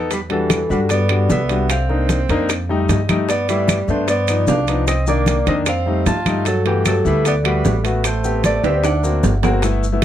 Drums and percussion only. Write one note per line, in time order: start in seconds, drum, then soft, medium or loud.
0.11 high bongo medium
0.11 high conga soft
0.11 high timbale medium
0.11 maracas medium
0.30 high bongo soft
0.30 high conga soft
0.30 high timbale medium
0.50 high bongo medium
0.50 high conga medium
0.50 high timbale medium
0.50 low timbale medium
0.50 claves medium
0.50 maracas medium
0.69 high bongo soft
0.69 maracas soft
0.89 high bongo medium
0.89 high conga soft
0.89 high timbale medium
0.89 maracas medium
1.09 high conga soft
1.09 high timbale medium
1.09 claves medium
1.30 high bongo soft
1.30 low bongo medium
1.30 high conga medium
1.30 low timbale medium
1.30 maracas medium
1.49 high bongo soft
1.49 high conga soft
1.49 high timbale medium
1.49 maracas soft
1.70 high bongo medium
1.70 high conga soft
1.70 high timbale medium
1.70 claves medium
1.70 maracas medium
1.89 high bongo soft
1.89 high conga soft
2.09 high bongo medium
2.09 high conga medium
2.09 high timbale medium
2.09 low timbale medium
2.09 maracas medium
2.29 high bongo soft
2.29 high conga soft
2.29 high timbale medium
2.29 maracas soft
2.49 high bongo medium
2.49 high conga soft
2.49 high timbale medium
2.49 claves medium
2.49 maracas medium
2.70 high conga soft
2.89 high bongo soft
2.89 low bongo medium
2.89 high conga medium
2.89 high timbale medium
2.89 low timbale medium
2.89 maracas medium
3.09 high bongo soft
3.09 high conga medium
3.09 high timbale medium
3.09 claves medium
3.09 maracas soft
3.29 high bongo medium
3.29 high conga soft
3.29 high timbale medium
3.29 maracas medium
3.48 high bongo soft
3.48 high conga soft
3.48 high timbale medium
3.48 maracas medium
3.68 high bongo medium
3.68 high conga medium
3.68 high timbale medium
3.68 low timbale medium
3.68 claves medium
3.68 maracas medium
3.88 high bongo soft
3.88 maracas soft
4.08 high bongo medium
4.08 high conga soft
4.08 high timbale medium
4.08 maracas medium
4.28 high conga soft
4.28 high timbale medium
4.28 claves medium
4.28 maracas medium
4.47 high bongo soft
4.47 low bongo medium
4.47 high conga medium
4.47 low timbale medium
4.47 maracas medium
4.67 high bongo soft
4.67 high conga soft
4.67 high timbale medium
4.67 maracas soft
4.87 high bongo medium
4.87 high conga soft
4.87 high timbale medium
4.87 claves medium
4.87 maracas medium
5.06 high bongo soft
5.06 high conga soft
5.06 maracas medium
5.26 high bongo medium
5.26 high conga medium
5.26 high timbale medium
5.26 low timbale medium
5.26 maracas medium
5.47 high bongo soft
5.47 high conga soft
5.47 high timbale medium
5.47 maracas soft
5.66 high bongo medium
5.66 high conga soft
5.66 high timbale medium
5.66 claves medium
5.66 maracas medium
5.87 high conga soft
6.06 high bongo soft
6.06 low bongo medium
6.06 high conga medium
6.06 high timbale medium
6.06 low timbale medium
6.06 maracas medium
6.26 high bongo soft
6.26 high conga medium
6.26 high timbale medium
6.26 claves medium
6.26 maracas soft
6.45 high bongo medium
6.45 high conga soft
6.45 high timbale medium
6.45 maracas medium
6.65 high bongo soft
6.65 high conga soft
6.65 high timbale medium
6.85 high bongo medium
6.85 high conga medium
6.85 high timbale medium
6.85 low timbale medium
6.85 claves medium
6.85 maracas medium
7.06 high bongo soft
7.06 maracas soft
7.25 high bongo medium
7.25 high conga soft
7.25 high timbale medium
7.25 maracas medium
7.45 high conga soft
7.45 high timbale medium
7.45 claves medium
7.65 high bongo soft
7.65 low bongo medium
7.65 high conga medium
7.65 low timbale medium
7.65 maracas medium
7.85 high bongo soft
7.85 high conga soft
7.85 high timbale medium
7.85 maracas soft
8.04 high bongo medium
8.04 high conga soft
8.04 high timbale medium
8.04 claves medium
8.04 maracas medium
8.24 high bongo soft
8.24 high conga soft
8.24 maracas medium
8.44 high bongo medium
8.44 high conga medium
8.44 high timbale medium
8.44 low timbale medium
8.44 maracas medium
8.64 high bongo soft
8.64 high conga soft
8.64 high timbale medium
8.64 maracas soft
8.84 high bongo medium
8.84 high conga soft
8.84 high timbale medium
8.84 claves medium
8.84 maracas medium
9.04 high conga soft
9.04 maracas medium
9.23 high bongo soft
9.23 low bongo medium
9.23 high conga medium
9.23 low timbale medium
9.23 maracas medium
9.43 high bongo soft
9.43 high conga medium
9.43 low timbale medium
9.43 claves medium
9.43 maracas soft
9.62 high bongo medium
9.62 high conga soft
9.62 high timbale medium
9.62 maracas medium
9.82 high conga soft
9.82 maracas medium